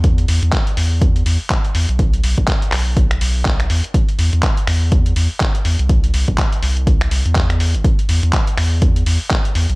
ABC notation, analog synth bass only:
X:1
M:4/4
L:1/16
Q:"Swing 16ths" 1/4=123
K:Clyd
V:1 name="Analog synth bass" clef=bass
E,,2 E,, E,, z2 E,,4 E,, z3 E,, B,,,- | B,,,2 B,,, B,,, z2 B,,,4 B,,,4 E,, z | z2 E,, E,, z2 E,,4 E,, z3 E,, C,,- | C,,2 C,, C,, z2 C,,4 C,, E,,4 G,,, |
z2 E,, E,, z2 E,,4 E,, z3 E,, B,,, |]